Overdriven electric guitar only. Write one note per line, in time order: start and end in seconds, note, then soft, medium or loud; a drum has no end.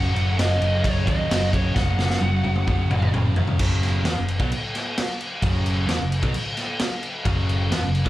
0.00 0.13 F#2 loud
0.00 0.12 C#3 loud
0.00 0.13 F#3 loud
0.00 3.19 C#4 loud
0.13 0.36 F#2 medium
0.13 0.36 C#3 loud
0.13 0.37 F#3 loud
0.36 0.60 F#2 loud
0.36 0.59 C#3 loud
0.36 0.61 F#3 loud
0.60 0.84 F#2 medium
0.60 0.83 C#3 loud
0.60 0.84 F#3 medium
0.84 1.05 F#2 loud
0.84 1.05 C#3 loud
0.84 1.06 F#3 loud
1.06 1.28 F#2 medium
1.06 1.28 C#3 loud
1.06 1.29 F#3 medium
1.28 1.52 F#2 loud
1.28 1.50 C#3 loud
1.28 1.52 F#3 loud
1.52 1.75 F#2 medium
1.52 1.74 C#3 medium
1.52 1.75 F#3 medium
1.75 1.96 F#2 loud
1.75 1.96 C#3 loud
1.75 1.97 F#3 loud
1.97 2.20 F#2 medium
1.97 2.20 C#3 loud
1.97 2.21 F#3 loud
2.21 2.42 F#2 loud
2.21 2.43 C#3 loud
2.21 2.42 F#3 loud
2.43 2.67 F#2 loud
2.43 2.67 C#3 medium
2.43 2.67 F#3 loud
2.68 2.90 F#2 medium
2.68 2.89 C#3 loud
2.68 2.90 F#3 loud
2.91 3.11 F#2 medium
2.91 3.11 C#3 medium
2.91 3.12 F#3 loud
3.12 3.35 F#2 medium
3.12 3.35 C#3 loud
3.12 3.36 F#3 loud
3.36 3.58 F#2 medium
3.36 3.58 C#3 medium
3.36 3.58 F#3 medium
3.60 4.05 F#2 loud
3.60 4.05 C#3 loud
3.60 4.05 F#3 loud
4.05 4.16 E3 loud
4.05 4.16 B3 loud
4.17 4.35 F#2 medium
4.17 4.35 C#3 medium
4.39 4.50 B2 loud
4.39 4.50 F#3 loud
4.52 muted overdriven electric guitar stroke medium
5.42 5.87 F#2 loud
5.42 5.86 C#3 loud
5.42 5.87 F#3 loud
5.87 5.98 E3 loud
5.87 5.99 B3 loud
5.98 6.17 F#2 medium
5.98 6.18 C#3 medium
6.22 6.33 B2 medium
6.22 6.33 F#3 loud
6.33 muted overdriven electric guitar stroke medium
7.25 7.70 F#2 medium
7.25 7.70 C#3 loud
7.25 7.70 F#3 loud
7.72 7.82 E3 loud
7.72 7.82 B3 loud
7.83 8.01 F#2 medium
7.83 8.01 C#3 medium
8.04 8.09 B2 loud
8.04 8.09 F#3 loud